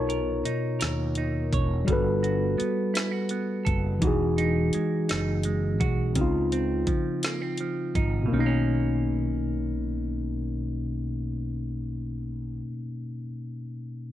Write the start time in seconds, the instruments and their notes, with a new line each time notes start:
Already playing: fretless electric bass B1, tine electric piano B2 D#4 A#4 C#5, clean electric guitar B3
0.09 clean electric guitar A#4, closed hi-hat
0.45 clean electric guitar D#4, muted fretless electric bass stroke, closed hi-hat
0.80 fretless electric bass D#2, clean electric guitar A#4, snare, closed hi-hat
1.15 clean electric guitar D#4, closed hi-hat
1.53 fretless electric bass E1, clean electric guitar C#5, kick, closed hi-hat
1.85 fretless electric bass G1, tine electric piano G3 F#4, clean electric guitar G3, kick, closed hi-hat
1.90 tine electric piano A4 B4
2.23 clean electric guitar F#4, closed hi-hat
2.58 clean electric guitar B3, muted fretless electric bass stroke, closed hi-hat
2.94 clean electric guitar E4, snare, closed hi-hat
3.11 clean electric guitar F#4
3.29 clean electric guitar B3, closed hi-hat
3.65 fretless electric bass F#1, clean electric guitar A4, kick, closed hi-hat
3.99 fretless electric bass E1, tine electric piano E3 D#4, clean electric guitar E3, kick, closed hi-hat
4.04 tine electric piano F#4 G#4
4.38 clean electric guitar D#4, closed hi-hat
4.73 clean electric guitar G#3, muted fretless electric bass stroke, closed hi-hat
5.09 fretless electric bass F#1, clean electric guitar D#4, snare, closed hi-hat
5.43 clean electric guitar G#3, closed hi-hat
5.80 fretless electric bass B1, clean electric guitar F#4, kick, closed hi-hat
6.13 fretless electric bass C#2, tine electric piano C#3 C4, clean electric guitar C#3, kick, closed hi-hat
6.19 tine electric piano D#4 F4
6.52 clean electric guitar C4, closed hi-hat
6.87 clean electric guitar F3, muted fretless electric bass stroke, kick, closed hi-hat
7.23 clean electric guitar A#3, snare, closed hi-hat
7.42 clean electric guitar C4
7.58 clean electric guitar F3, closed hi-hat
7.95 fretless electric bass G#1, clean electric guitar D#4, kick, closed hi-hat
8.23 tine electric piano B2, clean electric guitar B2
8.28 tine electric piano A#3
8.32 fretless electric bass B1, clean electric guitar D#3, tine electric piano C#4
8.39 clean electric guitar A#3, tine electric piano D#4
8.46 clean electric guitar C#4